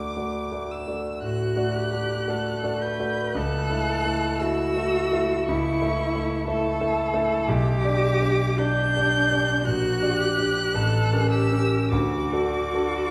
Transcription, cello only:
0, 0, Header, 1, 2, 480
1, 0, Start_track
1, 0, Key_signature, 2, "major"
1, 0, Tempo, 1056338
1, 1521, Time_signature, 4, 2, 24, 8
1, 2484, Tempo, 1005025
1, 3444, Tempo, 1090909
1, 4884, Tempo, 1169591
1, 5364, Tempo, 1226994
1, 5828, End_track
2, 0, Start_track
2, 0, Title_t, "Cello"
2, 0, Program_c, 0, 42
2, 560, Note_on_c, 0, 66, 66
2, 801, Note_on_c, 0, 67, 66
2, 808, Note_off_c, 0, 66, 0
2, 1042, Note_on_c, 0, 69, 62
2, 1048, Note_off_c, 0, 67, 0
2, 1279, Note_off_c, 0, 69, 0
2, 1281, Note_on_c, 0, 71, 73
2, 1533, Note_on_c, 0, 69, 88
2, 1540, Note_off_c, 0, 71, 0
2, 2007, Note_on_c, 0, 66, 93
2, 2014, Note_off_c, 0, 69, 0
2, 2494, Note_on_c, 0, 64, 75
2, 2501, Note_off_c, 0, 66, 0
2, 2970, Note_off_c, 0, 64, 0
2, 2973, Note_on_c, 0, 69, 86
2, 3447, Note_on_c, 0, 67, 110
2, 3454, Note_off_c, 0, 69, 0
2, 3934, Note_on_c, 0, 62, 91
2, 3941, Note_off_c, 0, 67, 0
2, 4402, Note_on_c, 0, 66, 101
2, 4409, Note_off_c, 0, 62, 0
2, 4640, Note_on_c, 0, 67, 86
2, 4647, Note_off_c, 0, 66, 0
2, 4885, Note_on_c, 0, 69, 89
2, 4891, Note_off_c, 0, 67, 0
2, 5114, Note_off_c, 0, 69, 0
2, 5116, Note_on_c, 0, 67, 79
2, 5357, Note_off_c, 0, 67, 0
2, 5364, Note_on_c, 0, 66, 92
2, 5828, Note_off_c, 0, 66, 0
2, 5828, End_track
0, 0, End_of_file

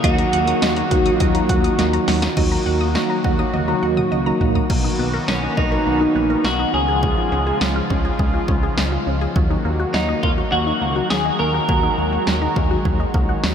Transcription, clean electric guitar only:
0, 0, Header, 1, 2, 480
1, 0, Start_track
1, 0, Key_signature, -6, "minor"
1, 0, Tempo, 582524
1, 31, Time_signature, 4, 2, 24, 8
1, 11162, End_track
2, 0, Start_track
2, 0, Title_t, "Clean electric guitar"
2, 0, Program_c, 0, 27
2, 32, Note_on_c, 0, 66, 94
2, 931, Note_off_c, 0, 66, 0
2, 931, Note_on_c, 0, 65, 94
2, 1439, Note_off_c, 0, 65, 0
2, 4353, Note_on_c, 0, 61, 78
2, 4590, Note_off_c, 0, 61, 0
2, 4593, Note_on_c, 0, 63, 91
2, 5314, Note_on_c, 0, 66, 103
2, 5334, Note_off_c, 0, 63, 0
2, 5536, Note_off_c, 0, 66, 0
2, 5553, Note_on_c, 0, 68, 95
2, 6239, Note_off_c, 0, 68, 0
2, 8191, Note_on_c, 0, 63, 83
2, 8415, Note_off_c, 0, 63, 0
2, 8429, Note_on_c, 0, 65, 83
2, 8494, Note_off_c, 0, 65, 0
2, 8669, Note_on_c, 0, 66, 94
2, 9145, Note_off_c, 0, 66, 0
2, 9148, Note_on_c, 0, 68, 105
2, 9384, Note_off_c, 0, 68, 0
2, 9387, Note_on_c, 0, 70, 98
2, 10076, Note_off_c, 0, 70, 0
2, 11162, End_track
0, 0, End_of_file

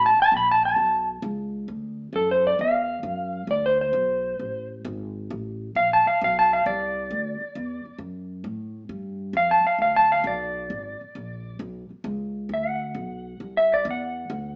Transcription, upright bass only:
0, 0, Header, 1, 3, 480
1, 0, Start_track
1, 0, Tempo, 450789
1, 1784, Time_signature, 4, 2, 24, 8
1, 15502, End_track
2, 0, Start_track
2, 0, Title_t, "Upright bass"
2, 0, Program_c, 0, 32
2, 0, Note_on_c, 0, 33, 94
2, 160, Note_off_c, 0, 33, 0
2, 337, Note_on_c, 0, 34, 90
2, 805, Note_off_c, 0, 34, 0
2, 813, Note_on_c, 0, 35, 80
2, 1284, Note_off_c, 0, 35, 0
2, 1303, Note_on_c, 0, 37, 96
2, 1769, Note_off_c, 0, 37, 0
2, 1789, Note_on_c, 0, 38, 81
2, 2253, Note_off_c, 0, 38, 0
2, 2264, Note_on_c, 0, 42, 81
2, 2731, Note_off_c, 0, 42, 0
2, 2758, Note_on_c, 0, 40, 83
2, 3219, Note_off_c, 0, 40, 0
2, 3227, Note_on_c, 0, 42, 88
2, 3691, Note_off_c, 0, 42, 0
2, 3697, Note_on_c, 0, 38, 85
2, 4169, Note_off_c, 0, 38, 0
2, 4184, Note_on_c, 0, 35, 84
2, 4653, Note_off_c, 0, 35, 0
2, 4679, Note_on_c, 0, 33, 79
2, 5141, Note_off_c, 0, 33, 0
2, 5160, Note_on_c, 0, 32, 92
2, 5622, Note_off_c, 0, 32, 0
2, 5648, Note_on_c, 0, 33, 90
2, 6106, Note_off_c, 0, 33, 0
2, 6126, Note_on_c, 0, 34, 83
2, 6421, Note_off_c, 0, 34, 0
2, 6618, Note_on_c, 0, 35, 88
2, 7072, Note_off_c, 0, 35, 0
2, 7091, Note_on_c, 0, 36, 93
2, 7548, Note_off_c, 0, 36, 0
2, 7565, Note_on_c, 0, 38, 91
2, 7861, Note_off_c, 0, 38, 0
2, 8043, Note_on_c, 0, 40, 87
2, 8340, Note_off_c, 0, 40, 0
2, 8502, Note_on_c, 0, 42, 83
2, 8974, Note_off_c, 0, 42, 0
2, 8987, Note_on_c, 0, 45, 87
2, 9456, Note_off_c, 0, 45, 0
2, 9468, Note_on_c, 0, 43, 84
2, 9931, Note_off_c, 0, 43, 0
2, 9937, Note_on_c, 0, 41, 87
2, 10246, Note_off_c, 0, 41, 0
2, 10418, Note_on_c, 0, 38, 76
2, 10891, Note_off_c, 0, 38, 0
2, 10902, Note_on_c, 0, 35, 94
2, 11373, Note_off_c, 0, 35, 0
2, 11393, Note_on_c, 0, 32, 80
2, 11694, Note_off_c, 0, 32, 0
2, 11874, Note_on_c, 0, 34, 81
2, 12338, Note_off_c, 0, 34, 0
2, 12344, Note_on_c, 0, 35, 86
2, 12648, Note_off_c, 0, 35, 0
2, 12821, Note_on_c, 0, 37, 92
2, 13291, Note_off_c, 0, 37, 0
2, 13301, Note_on_c, 0, 38, 84
2, 13770, Note_off_c, 0, 38, 0
2, 13784, Note_on_c, 0, 35, 82
2, 14252, Note_off_c, 0, 35, 0
2, 14269, Note_on_c, 0, 36, 80
2, 14734, Note_off_c, 0, 36, 0
2, 14748, Note_on_c, 0, 40, 95
2, 15213, Note_off_c, 0, 40, 0
2, 15223, Note_on_c, 0, 38, 93
2, 15502, Note_off_c, 0, 38, 0
2, 15502, End_track
3, 0, Start_track
3, 0, Title_t, "Muted upright bass strokes"
3, 183, Note_on_c, 9, 29, 42
3, 289, Note_off_c, 9, 29, 0
3, 6454, Note_on_c, 9, 29, 39
3, 6560, Note_off_c, 9, 29, 0
3, 7888, Note_on_c, 9, 29, 39
3, 7995, Note_off_c, 9, 29, 0
3, 8364, Note_on_c, 9, 29, 39
3, 8471, Note_off_c, 9, 29, 0
3, 10265, Note_on_c, 9, 29, 39
3, 10371, Note_off_c, 9, 29, 0
3, 11723, Note_on_c, 9, 29, 39
3, 11830, Note_off_c, 9, 29, 0
3, 12676, Note_on_c, 9, 29, 36
3, 12782, Note_off_c, 9, 29, 0
3, 15502, End_track
0, 0, End_of_file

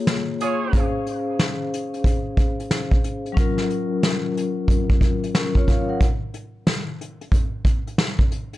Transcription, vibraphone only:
0, 0, Header, 1, 2, 480
1, 0, Start_track
1, 0, Key_signature, -5, "major"
1, 0, Tempo, 659341
1, 536, Time_signature, 4, 2, 24, 8
1, 6244, End_track
2, 0, Start_track
2, 0, Title_t, "Vibraphone"
2, 0, Program_c, 0, 11
2, 0, Control_c, 0, 64, 127
2, 0, Note_on_c, 0, 58, 86
2, 0, Note_on_c, 0, 65, 71
2, 0, Note_on_c, 0, 68, 74
2, 0, Note_on_c, 0, 73, 84
2, 495, Note_off_c, 0, 58, 0
2, 502, Note_off_c, 0, 65, 0
2, 508, Note_on_c, 0, 61, 67
2, 510, Note_off_c, 0, 68, 0
2, 518, Note_off_c, 0, 73, 0
2, 522, Note_on_c, 0, 68, 60
2, 538, Note_on_c, 0, 72, 64
2, 546, Control_c, 0, 64, 0
2, 553, Note_on_c, 0, 77, 69
2, 677, Control_c, 0, 64, 127
2, 2413, Note_off_c, 0, 61, 0
2, 2419, Note_on_c, 0, 54, 78
2, 2420, Note_off_c, 0, 68, 0
2, 2428, Note_off_c, 0, 72, 0
2, 2435, Note_off_c, 0, 77, 0
2, 2435, Note_on_c, 0, 61, 73
2, 2451, Note_on_c, 0, 65, 70
2, 2464, Control_c, 0, 64, 0
2, 2465, Note_on_c, 0, 70, 89
2, 2585, Control_c, 0, 64, 127
2, 3856, Note_off_c, 0, 61, 0
2, 3864, Note_off_c, 0, 65, 0
2, 3872, Note_off_c, 0, 70, 0
2, 3896, Note_on_c, 0, 70, 71
2, 3900, Note_on_c, 0, 61, 59
2, 4039, Note_off_c, 0, 70, 0
2, 4041, Note_off_c, 0, 61, 0
2, 4050, Note_on_c, 0, 73, 70
2, 4055, Note_on_c, 0, 65, 60
2, 4133, Note_off_c, 0, 73, 0
2, 4136, Note_off_c, 0, 65, 0
2, 4137, Note_on_c, 0, 77, 73
2, 4279, Note_off_c, 0, 77, 0
2, 4287, Note_on_c, 0, 78, 64
2, 4292, Note_on_c, 0, 70, 56
2, 4328, Note_off_c, 0, 54, 0
2, 4372, Note_off_c, 0, 78, 0
2, 4374, Note_off_c, 0, 70, 0
2, 4386, Control_c, 0, 64, 0
2, 4514, Control_c, 0, 64, 127
2, 6244, End_track
0, 0, End_of_file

